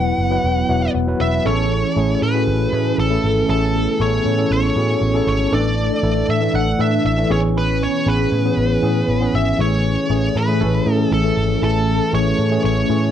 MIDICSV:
0, 0, Header, 1, 7, 480
1, 0, Start_track
1, 0, Key_signature, 3, "major"
1, 0, Tempo, 508475
1, 1374, Time_signature, 4, 2, 24, 8
1, 12379, End_track
2, 0, Start_track
2, 0, Title_t, "Synth bell"
2, 0, Program_c, 0, 98
2, 1142, Note_on_c, 0, 88, 81
2, 1361, Note_off_c, 0, 88, 0
2, 1382, Note_on_c, 0, 85, 86
2, 2060, Note_off_c, 0, 85, 0
2, 2103, Note_on_c, 0, 83, 79
2, 2781, Note_off_c, 0, 83, 0
2, 2821, Note_on_c, 0, 81, 75
2, 3264, Note_off_c, 0, 81, 0
2, 3304, Note_on_c, 0, 81, 79
2, 3746, Note_off_c, 0, 81, 0
2, 3785, Note_on_c, 0, 85, 79
2, 4227, Note_off_c, 0, 85, 0
2, 4265, Note_on_c, 0, 85, 83
2, 4942, Note_off_c, 0, 85, 0
2, 4981, Note_on_c, 0, 85, 85
2, 5201, Note_off_c, 0, 85, 0
2, 5219, Note_on_c, 0, 86, 88
2, 5899, Note_off_c, 0, 86, 0
2, 5944, Note_on_c, 0, 88, 83
2, 6163, Note_off_c, 0, 88, 0
2, 6180, Note_on_c, 0, 90, 88
2, 6401, Note_off_c, 0, 90, 0
2, 6420, Note_on_c, 0, 88, 84
2, 6640, Note_off_c, 0, 88, 0
2, 6660, Note_on_c, 0, 88, 88
2, 6880, Note_off_c, 0, 88, 0
2, 6907, Note_on_c, 0, 85, 83
2, 7012, Note_off_c, 0, 85, 0
2, 7145, Note_on_c, 0, 83, 83
2, 7363, Note_off_c, 0, 83, 0
2, 7387, Note_on_c, 0, 85, 79
2, 7604, Note_off_c, 0, 85, 0
2, 7624, Note_on_c, 0, 83, 77
2, 8781, Note_off_c, 0, 83, 0
2, 8825, Note_on_c, 0, 88, 78
2, 9043, Note_off_c, 0, 88, 0
2, 9066, Note_on_c, 0, 85, 86
2, 9742, Note_off_c, 0, 85, 0
2, 9782, Note_on_c, 0, 83, 83
2, 10283, Note_off_c, 0, 83, 0
2, 10283, Note_on_c, 0, 81, 83
2, 10461, Note_off_c, 0, 81, 0
2, 10506, Note_on_c, 0, 81, 74
2, 10947, Note_off_c, 0, 81, 0
2, 10982, Note_on_c, 0, 81, 78
2, 11425, Note_off_c, 0, 81, 0
2, 11461, Note_on_c, 0, 85, 81
2, 11904, Note_off_c, 0, 85, 0
2, 11940, Note_on_c, 0, 85, 82
2, 12379, Note_off_c, 0, 85, 0
2, 12379, End_track
3, 0, Start_track
3, 0, Title_t, "Lead electric guitar"
3, 0, Program_c, 1, 29
3, 0, Note_on_c, 1, 78, 96
3, 860, Note_off_c, 1, 78, 0
3, 1144, Note_on_c, 1, 76, 91
3, 1363, Note_off_c, 1, 76, 0
3, 1385, Note_on_c, 1, 73, 89
3, 2062, Note_off_c, 1, 73, 0
3, 2105, Note_on_c, 1, 71, 98
3, 2782, Note_off_c, 1, 71, 0
3, 2830, Note_on_c, 1, 69, 91
3, 3293, Note_off_c, 1, 69, 0
3, 3304, Note_on_c, 1, 69, 89
3, 3790, Note_on_c, 1, 73, 96
3, 3793, Note_off_c, 1, 69, 0
3, 4263, Note_off_c, 1, 73, 0
3, 4274, Note_on_c, 1, 73, 104
3, 4980, Note_off_c, 1, 73, 0
3, 4991, Note_on_c, 1, 73, 104
3, 5230, Note_off_c, 1, 73, 0
3, 5233, Note_on_c, 1, 74, 101
3, 5948, Note_off_c, 1, 74, 0
3, 5952, Note_on_c, 1, 76, 98
3, 6167, Note_off_c, 1, 76, 0
3, 6187, Note_on_c, 1, 78, 102
3, 6404, Note_off_c, 1, 78, 0
3, 6429, Note_on_c, 1, 76, 98
3, 6645, Note_off_c, 1, 76, 0
3, 6666, Note_on_c, 1, 76, 104
3, 6906, Note_off_c, 1, 76, 0
3, 6910, Note_on_c, 1, 73, 102
3, 6973, Note_off_c, 1, 73, 0
3, 7156, Note_on_c, 1, 71, 92
3, 7392, Note_off_c, 1, 71, 0
3, 7394, Note_on_c, 1, 73, 94
3, 7631, Note_off_c, 1, 73, 0
3, 7632, Note_on_c, 1, 71, 86
3, 8830, Note_on_c, 1, 76, 102
3, 8859, Note_off_c, 1, 71, 0
3, 9046, Note_off_c, 1, 76, 0
3, 9076, Note_on_c, 1, 73, 94
3, 9792, Note_on_c, 1, 71, 94
3, 9806, Note_off_c, 1, 73, 0
3, 10330, Note_off_c, 1, 71, 0
3, 10330, Note_on_c, 1, 69, 94
3, 10507, Note_off_c, 1, 69, 0
3, 10511, Note_on_c, 1, 69, 92
3, 10949, Note_off_c, 1, 69, 0
3, 10990, Note_on_c, 1, 69, 90
3, 11429, Note_off_c, 1, 69, 0
3, 11469, Note_on_c, 1, 73, 89
3, 11908, Note_off_c, 1, 73, 0
3, 11946, Note_on_c, 1, 73, 91
3, 12379, Note_off_c, 1, 73, 0
3, 12379, End_track
4, 0, Start_track
4, 0, Title_t, "Analog polysynth"
4, 0, Program_c, 2, 90
4, 1374, Note_on_c, 2, 61, 75
4, 1376, Note_on_c, 2, 52, 77
4, 1376, Note_on_c, 2, 69, 87
4, 5176, Note_off_c, 2, 61, 0
4, 5177, Note_off_c, 2, 52, 0
4, 5177, Note_off_c, 2, 69, 0
4, 5215, Note_on_c, 2, 62, 78
4, 5216, Note_on_c, 2, 52, 80
4, 5216, Note_on_c, 2, 69, 83
4, 6861, Note_off_c, 2, 52, 0
4, 6861, Note_off_c, 2, 62, 0
4, 6861, Note_off_c, 2, 69, 0
4, 6892, Note_on_c, 2, 52, 77
4, 6893, Note_on_c, 2, 61, 80
4, 6893, Note_on_c, 2, 68, 85
4, 9015, Note_off_c, 2, 52, 0
4, 9016, Note_off_c, 2, 61, 0
4, 9016, Note_off_c, 2, 68, 0
4, 10014, Note_on_c, 2, 61, 78
4, 10014, Note_on_c, 2, 69, 90
4, 10015, Note_on_c, 2, 52, 77
4, 12379, Note_off_c, 2, 52, 0
4, 12379, Note_off_c, 2, 61, 0
4, 12379, Note_off_c, 2, 69, 0
4, 12379, End_track
5, 0, Start_track
5, 0, Title_t, "Tine electric piano"
5, 0, Program_c, 3, 4
5, 0, Control_c, 3, 64, 127
5, 0, Note_on_c, 3, 54, 72
5, 0, Note_on_c, 3, 59, 65
5, 0, Note_on_c, 3, 64, 67
5, 0, Note_on_c, 3, 71, 84
5, 227, Note_off_c, 3, 54, 0
5, 228, Note_off_c, 3, 59, 0
5, 229, Note_off_c, 3, 64, 0
5, 232, Note_off_c, 3, 71, 0
5, 285, Note_on_c, 3, 54, 84
5, 291, Note_on_c, 3, 59, 82
5, 294, Note_on_c, 3, 64, 80
5, 297, Note_on_c, 3, 71, 91
5, 600, Note_off_c, 3, 54, 0
5, 603, Note_off_c, 3, 59, 0
5, 604, Note_off_c, 3, 64, 0
5, 606, Note_off_c, 3, 71, 0
5, 649, Note_on_c, 3, 54, 87
5, 654, Note_on_c, 3, 59, 76
5, 655, Note_on_c, 3, 64, 77
5, 655, Note_on_c, 3, 76, 70
5, 660, Note_on_c, 3, 71, 91
5, 878, Note_off_c, 3, 76, 0
5, 893, Note_on_c, 3, 78, 75
5, 962, Note_off_c, 3, 54, 0
5, 964, Note_off_c, 3, 59, 0
5, 965, Note_off_c, 3, 64, 0
5, 967, Note_off_c, 3, 71, 0
5, 1011, Note_on_c, 3, 54, 87
5, 1015, Note_on_c, 3, 59, 85
5, 1017, Note_on_c, 3, 64, 80
5, 1023, Note_on_c, 3, 71, 96
5, 1117, Note_off_c, 3, 78, 0
5, 1138, Note_on_c, 3, 83, 71
5, 1323, Note_off_c, 3, 54, 0
5, 1325, Note_off_c, 3, 59, 0
5, 1326, Note_off_c, 3, 64, 0
5, 1329, Note_off_c, 3, 71, 0
5, 1359, Note_off_c, 3, 83, 0
5, 1372, Note_on_c, 3, 68, 70
5, 1375, Note_on_c, 3, 61, 65
5, 1378, Note_on_c, 3, 64, 64
5, 1382, Note_on_c, 3, 69, 75
5, 1387, Control_c, 3, 64, 0
5, 1578, Control_c, 3, 64, 127
5, 1787, Note_off_c, 3, 68, 0
5, 1789, Note_off_c, 3, 61, 0
5, 1790, Note_off_c, 3, 64, 0
5, 1792, Note_off_c, 3, 69, 0
5, 1852, Note_on_c, 3, 57, 72
5, 1856, Note_on_c, 3, 61, 68
5, 1860, Note_on_c, 3, 64, 65
5, 1863, Note_on_c, 3, 68, 82
5, 2163, Note_off_c, 3, 57, 0
5, 2165, Note_off_c, 3, 61, 0
5, 2167, Note_off_c, 3, 64, 0
5, 2169, Note_off_c, 3, 68, 0
5, 2210, Note_on_c, 3, 68, 70
5, 2215, Note_on_c, 3, 61, 70
5, 2217, Note_on_c, 3, 64, 66
5, 2222, Note_on_c, 3, 66, 81
5, 2523, Note_off_c, 3, 68, 0
5, 2525, Note_off_c, 3, 61, 0
5, 2526, Note_off_c, 3, 64, 0
5, 2529, Note_off_c, 3, 66, 0
5, 2573, Note_on_c, 3, 68, 71
5, 2577, Note_on_c, 3, 61, 65
5, 2579, Note_on_c, 3, 64, 68
5, 2584, Note_on_c, 3, 71, 81
5, 2884, Note_off_c, 3, 68, 0
5, 2886, Note_off_c, 3, 61, 0
5, 2887, Note_off_c, 3, 64, 0
5, 2889, Note_off_c, 3, 71, 0
5, 2929, Note_on_c, 3, 57, 74
5, 2934, Note_on_c, 3, 61, 68
5, 2937, Note_on_c, 3, 64, 69
5, 2941, Note_on_c, 3, 69, 78
5, 3242, Note_off_c, 3, 57, 0
5, 3244, Note_off_c, 3, 61, 0
5, 3246, Note_off_c, 3, 64, 0
5, 3248, Note_off_c, 3, 69, 0
5, 3287, Note_on_c, 3, 57, 70
5, 3293, Note_on_c, 3, 61, 65
5, 3296, Note_on_c, 3, 64, 64
5, 3297, Note_on_c, 3, 68, 60
5, 3353, Note_off_c, 3, 68, 0
5, 3355, Note_on_c, 3, 69, 80
5, 3704, Note_off_c, 3, 57, 0
5, 3707, Note_off_c, 3, 61, 0
5, 3709, Note_off_c, 3, 64, 0
5, 3738, Note_off_c, 3, 69, 0
5, 3772, Note_on_c, 3, 68, 72
5, 3775, Note_on_c, 3, 61, 69
5, 3777, Note_on_c, 3, 64, 72
5, 3782, Note_on_c, 3, 69, 87
5, 4083, Note_off_c, 3, 68, 0
5, 4085, Note_off_c, 3, 61, 0
5, 4086, Note_off_c, 3, 64, 0
5, 4089, Note_off_c, 3, 69, 0
5, 4128, Note_on_c, 3, 68, 72
5, 4132, Note_on_c, 3, 61, 63
5, 4137, Note_on_c, 3, 64, 65
5, 4139, Note_on_c, 3, 69, 83
5, 4441, Note_off_c, 3, 68, 0
5, 4443, Note_off_c, 3, 61, 0
5, 4446, Note_off_c, 3, 64, 0
5, 4447, Note_off_c, 3, 69, 0
5, 4491, Note_on_c, 3, 68, 73
5, 4495, Note_on_c, 3, 61, 68
5, 4499, Note_on_c, 3, 64, 66
5, 4503, Note_on_c, 3, 66, 79
5, 4803, Note_off_c, 3, 68, 0
5, 4805, Note_off_c, 3, 61, 0
5, 4807, Note_off_c, 3, 64, 0
5, 4809, Note_off_c, 3, 66, 0
5, 4850, Note_on_c, 3, 68, 77
5, 4854, Note_on_c, 3, 61, 71
5, 4857, Note_on_c, 3, 64, 70
5, 4862, Note_on_c, 3, 69, 85
5, 5163, Note_off_c, 3, 68, 0
5, 5165, Note_off_c, 3, 61, 0
5, 5166, Note_off_c, 3, 64, 0
5, 5168, Note_off_c, 3, 69, 0
5, 5208, Note_on_c, 3, 52, 72
5, 5213, Note_on_c, 3, 57, 68
5, 5215, Note_on_c, 3, 62, 62
5, 5221, Note_on_c, 3, 69, 79
5, 5227, Control_c, 3, 64, 0
5, 5388, Control_c, 3, 64, 127
5, 5625, Note_off_c, 3, 52, 0
5, 5627, Note_off_c, 3, 57, 0
5, 5628, Note_off_c, 3, 62, 0
5, 5631, Note_off_c, 3, 69, 0
5, 5686, Note_on_c, 3, 52, 77
5, 5691, Note_on_c, 3, 57, 70
5, 5695, Note_on_c, 3, 62, 66
5, 5698, Note_on_c, 3, 69, 87
5, 6000, Note_off_c, 3, 52, 0
5, 6003, Note_off_c, 3, 57, 0
5, 6005, Note_off_c, 3, 62, 0
5, 6006, Note_off_c, 3, 69, 0
5, 6045, Note_on_c, 3, 52, 74
5, 6049, Note_on_c, 3, 57, 71
5, 6054, Note_on_c, 3, 62, 69
5, 6057, Note_on_c, 3, 69, 83
5, 6360, Note_off_c, 3, 52, 0
5, 6362, Note_off_c, 3, 57, 0
5, 6365, Note_off_c, 3, 62, 0
5, 6366, Note_off_c, 3, 69, 0
5, 6409, Note_on_c, 3, 52, 71
5, 6413, Note_on_c, 3, 57, 65
5, 6417, Note_on_c, 3, 62, 68
5, 6422, Note_on_c, 3, 64, 80
5, 6722, Note_off_c, 3, 52, 0
5, 6724, Note_off_c, 3, 57, 0
5, 6726, Note_off_c, 3, 62, 0
5, 6728, Note_off_c, 3, 64, 0
5, 6769, Note_on_c, 3, 52, 79
5, 6773, Note_on_c, 3, 57, 68
5, 6777, Note_on_c, 3, 62, 69
5, 6780, Note_on_c, 3, 69, 79
5, 6876, Note_off_c, 3, 52, 0
5, 6887, Note_on_c, 3, 52, 76
5, 6892, Note_on_c, 3, 59, 70
5, 6894, Note_off_c, 3, 57, 0
5, 6895, Note_on_c, 3, 61, 69
5, 6896, Note_off_c, 3, 62, 0
5, 6897, Note_off_c, 3, 69, 0
5, 6898, Note_on_c, 3, 68, 85
5, 6905, Control_c, 3, 64, 0
5, 7073, Control_c, 3, 64, 127
5, 7511, Note_off_c, 3, 52, 0
5, 7514, Note_off_c, 3, 59, 0
5, 7515, Note_off_c, 3, 61, 0
5, 7516, Note_off_c, 3, 68, 0
5, 7608, Note_on_c, 3, 52, 72
5, 7613, Note_on_c, 3, 59, 67
5, 7617, Note_on_c, 3, 61, 66
5, 7619, Note_on_c, 3, 68, 81
5, 7921, Note_off_c, 3, 52, 0
5, 7924, Note_off_c, 3, 59, 0
5, 7926, Note_off_c, 3, 61, 0
5, 7927, Note_off_c, 3, 68, 0
5, 7973, Note_on_c, 3, 52, 74
5, 7977, Note_on_c, 3, 59, 64
5, 7981, Note_on_c, 3, 61, 70
5, 7983, Note_on_c, 3, 68, 80
5, 8284, Note_off_c, 3, 52, 0
5, 8286, Note_off_c, 3, 59, 0
5, 8288, Note_off_c, 3, 61, 0
5, 8289, Note_off_c, 3, 68, 0
5, 8331, Note_on_c, 3, 52, 86
5, 8334, Note_on_c, 3, 59, 73
5, 8339, Note_on_c, 3, 61, 79
5, 8343, Note_on_c, 3, 68, 98
5, 8643, Note_off_c, 3, 52, 0
5, 8644, Note_off_c, 3, 59, 0
5, 8647, Note_off_c, 3, 61, 0
5, 8649, Note_off_c, 3, 68, 0
5, 8691, Note_on_c, 3, 52, 75
5, 8692, Note_on_c, 3, 59, 72
5, 8697, Note_on_c, 3, 61, 65
5, 8702, Note_on_c, 3, 68, 81
5, 9003, Note_off_c, 3, 52, 0
5, 9004, Note_off_c, 3, 59, 0
5, 9006, Note_off_c, 3, 61, 0
5, 9008, Note_off_c, 3, 68, 0
5, 9049, Note_on_c, 3, 52, 69
5, 9052, Note_on_c, 3, 57, 62
5, 9057, Note_on_c, 3, 61, 66
5, 9061, Note_on_c, 3, 68, 75
5, 9066, Control_c, 3, 64, 0
5, 9252, Control_c, 3, 64, 127
5, 9465, Note_off_c, 3, 52, 0
5, 9467, Note_off_c, 3, 57, 0
5, 9469, Note_off_c, 3, 61, 0
5, 9471, Note_off_c, 3, 68, 0
5, 9531, Note_on_c, 3, 52, 72
5, 9533, Note_on_c, 3, 57, 66
5, 9536, Note_on_c, 3, 61, 68
5, 9540, Note_on_c, 3, 68, 84
5, 9843, Note_off_c, 3, 52, 0
5, 9844, Note_off_c, 3, 57, 0
5, 9845, Note_off_c, 3, 61, 0
5, 9847, Note_off_c, 3, 68, 0
5, 9891, Note_on_c, 3, 52, 74
5, 9893, Note_on_c, 3, 57, 63
5, 9898, Note_on_c, 3, 61, 70
5, 9902, Note_on_c, 3, 68, 81
5, 10203, Note_off_c, 3, 52, 0
5, 10204, Note_off_c, 3, 57, 0
5, 10207, Note_off_c, 3, 61, 0
5, 10209, Note_off_c, 3, 68, 0
5, 10251, Note_on_c, 3, 52, 73
5, 10254, Note_on_c, 3, 57, 66
5, 10259, Note_on_c, 3, 61, 66
5, 10263, Note_on_c, 3, 68, 76
5, 10563, Note_off_c, 3, 52, 0
5, 10564, Note_off_c, 3, 57, 0
5, 10567, Note_off_c, 3, 61, 0
5, 10569, Note_off_c, 3, 68, 0
5, 10609, Note_on_c, 3, 52, 77
5, 10612, Note_on_c, 3, 57, 70
5, 10617, Note_on_c, 3, 61, 67
5, 10620, Note_on_c, 3, 69, 82
5, 10922, Note_off_c, 3, 52, 0
5, 10923, Note_off_c, 3, 57, 0
5, 10926, Note_off_c, 3, 61, 0
5, 10927, Note_off_c, 3, 69, 0
5, 10966, Note_on_c, 3, 52, 70
5, 10970, Note_on_c, 3, 57, 63
5, 10974, Note_on_c, 3, 61, 69
5, 10977, Note_on_c, 3, 64, 79
5, 11384, Note_off_c, 3, 52, 0
5, 11386, Note_off_c, 3, 57, 0
5, 11388, Note_off_c, 3, 61, 0
5, 11389, Note_off_c, 3, 64, 0
5, 11449, Note_on_c, 3, 52, 77
5, 11451, Note_on_c, 3, 57, 70
5, 11456, Note_on_c, 3, 61, 69
5, 11459, Note_on_c, 3, 68, 83
5, 11762, Note_off_c, 3, 52, 0
5, 11763, Note_off_c, 3, 57, 0
5, 11765, Note_off_c, 3, 61, 0
5, 11767, Note_off_c, 3, 68, 0
5, 11809, Note_on_c, 3, 52, 71
5, 11812, Note_on_c, 3, 57, 67
5, 11818, Note_on_c, 3, 61, 65
5, 11820, Note_on_c, 3, 68, 85
5, 12122, Note_off_c, 3, 52, 0
5, 12124, Note_off_c, 3, 57, 0
5, 12126, Note_off_c, 3, 61, 0
5, 12127, Note_off_c, 3, 68, 0
5, 12170, Note_on_c, 3, 52, 73
5, 12173, Note_on_c, 3, 57, 64
5, 12177, Note_on_c, 3, 61, 70
5, 12180, Note_on_c, 3, 68, 81
5, 12379, Note_off_c, 3, 52, 0
5, 12379, Note_off_c, 3, 57, 0
5, 12379, Note_off_c, 3, 61, 0
5, 12379, Note_off_c, 3, 68, 0
5, 12379, End_track
6, 0, Start_track
6, 0, Title_t, "String machine"
6, 0, Program_c, 4, 50
6, 0, Note_on_c, 4, 54, 78
6, 0, Note_on_c, 4, 59, 75
6, 0, Note_on_c, 4, 64, 88
6, 1333, Note_off_c, 4, 59, 0
6, 1334, Note_off_c, 4, 54, 0
6, 1334, Note_off_c, 4, 64, 0
6, 1377, Note_on_c, 4, 61, 89
6, 1378, Note_on_c, 4, 52, 82
6, 1378, Note_on_c, 4, 57, 70
6, 3277, Note_off_c, 4, 57, 0
6, 3296, Note_on_c, 4, 59, 74
6, 5178, Note_off_c, 4, 52, 0
6, 5178, Note_off_c, 4, 61, 0
6, 5196, Note_off_c, 4, 59, 0
6, 5215, Note_on_c, 4, 52, 82
6, 5215, Note_on_c, 4, 57, 74
6, 5216, Note_on_c, 4, 62, 86
6, 6878, Note_off_c, 4, 57, 0
6, 6878, Note_off_c, 4, 62, 0
6, 6893, Note_on_c, 4, 61, 92
6, 6894, Note_on_c, 4, 59, 72
6, 9017, Note_off_c, 4, 52, 0
6, 9032, Note_off_c, 4, 59, 0
6, 9052, Note_on_c, 4, 52, 81
6, 9053, Note_on_c, 4, 57, 73
6, 12379, Note_off_c, 4, 52, 0
6, 12379, Note_off_c, 4, 57, 0
6, 12379, Note_off_c, 4, 61, 0
6, 12379, End_track
7, 0, Start_track
7, 0, Title_t, "Picked electric bass"
7, 0, Program_c, 5, 34
7, 0, Note_on_c, 5, 28, 98
7, 107, Note_off_c, 5, 28, 0
7, 173, Note_on_c, 5, 30, 85
7, 346, Note_off_c, 5, 30, 0
7, 415, Note_on_c, 5, 28, 98
7, 588, Note_off_c, 5, 28, 0
7, 653, Note_on_c, 5, 28, 104
7, 826, Note_off_c, 5, 28, 0
7, 894, Note_on_c, 5, 28, 93
7, 1067, Note_off_c, 5, 28, 0
7, 1135, Note_on_c, 5, 28, 99
7, 1308, Note_off_c, 5, 28, 0
7, 1375, Note_on_c, 5, 33, 104
7, 1721, Note_off_c, 5, 33, 0
7, 1856, Note_on_c, 5, 33, 101
7, 2028, Note_off_c, 5, 33, 0
7, 2096, Note_on_c, 5, 45, 91
7, 2335, Note_on_c, 5, 33, 105
7, 2349, Note_off_c, 5, 45, 0
7, 2507, Note_off_c, 5, 33, 0
7, 2576, Note_on_c, 5, 45, 105
7, 2748, Note_off_c, 5, 45, 0
7, 2815, Note_on_c, 5, 33, 97
7, 2988, Note_off_c, 5, 33, 0
7, 3055, Note_on_c, 5, 32, 92
7, 3227, Note_off_c, 5, 32, 0
7, 3295, Note_on_c, 5, 33, 100
7, 3640, Note_off_c, 5, 33, 0
7, 3776, Note_on_c, 5, 33, 103
7, 3948, Note_off_c, 5, 33, 0
7, 4017, Note_on_c, 5, 45, 89
7, 4188, Note_off_c, 5, 45, 0
7, 4255, Note_on_c, 5, 33, 98
7, 4428, Note_off_c, 5, 33, 0
7, 4494, Note_on_c, 5, 45, 95
7, 4667, Note_off_c, 5, 45, 0
7, 4733, Note_on_c, 5, 33, 98
7, 4906, Note_off_c, 5, 33, 0
7, 4974, Note_on_c, 5, 32, 87
7, 5147, Note_off_c, 5, 32, 0
7, 5215, Note_on_c, 5, 33, 103
7, 5560, Note_off_c, 5, 33, 0
7, 5693, Note_on_c, 5, 33, 102
7, 5866, Note_off_c, 5, 33, 0
7, 5934, Note_on_c, 5, 45, 90
7, 6107, Note_off_c, 5, 45, 0
7, 6173, Note_on_c, 5, 33, 108
7, 6347, Note_off_c, 5, 33, 0
7, 6413, Note_on_c, 5, 45, 97
7, 6586, Note_off_c, 5, 45, 0
7, 6654, Note_on_c, 5, 33, 103
7, 6827, Note_off_c, 5, 33, 0
7, 6894, Note_on_c, 5, 33, 94
7, 7413, Note_off_c, 5, 33, 0
7, 7613, Note_on_c, 5, 33, 109
7, 7786, Note_off_c, 5, 33, 0
7, 7853, Note_on_c, 5, 45, 92
7, 8026, Note_off_c, 5, 45, 0
7, 8092, Note_on_c, 5, 33, 97
7, 8265, Note_off_c, 5, 33, 0
7, 8333, Note_on_c, 5, 45, 93
7, 8506, Note_off_c, 5, 45, 0
7, 8573, Note_on_c, 5, 33, 101
7, 8746, Note_off_c, 5, 33, 0
7, 8814, Note_on_c, 5, 32, 90
7, 8987, Note_off_c, 5, 32, 0
7, 9052, Note_on_c, 5, 33, 104
7, 9398, Note_off_c, 5, 33, 0
7, 9534, Note_on_c, 5, 33, 103
7, 9707, Note_off_c, 5, 33, 0
7, 9774, Note_on_c, 5, 45, 97
7, 10015, Note_on_c, 5, 33, 107
7, 10030, Note_off_c, 5, 45, 0
7, 10188, Note_off_c, 5, 33, 0
7, 10254, Note_on_c, 5, 45, 102
7, 10427, Note_off_c, 5, 45, 0
7, 10493, Note_on_c, 5, 33, 100
7, 10666, Note_off_c, 5, 33, 0
7, 10733, Note_on_c, 5, 32, 89
7, 10906, Note_off_c, 5, 32, 0
7, 10972, Note_on_c, 5, 33, 103
7, 11318, Note_off_c, 5, 33, 0
7, 11454, Note_on_c, 5, 33, 98
7, 11627, Note_off_c, 5, 33, 0
7, 11694, Note_on_c, 5, 45, 90
7, 11867, Note_off_c, 5, 45, 0
7, 11935, Note_on_c, 5, 33, 104
7, 12107, Note_off_c, 5, 33, 0
7, 12174, Note_on_c, 5, 45, 94
7, 12347, Note_off_c, 5, 45, 0
7, 12379, End_track
0, 0, End_of_file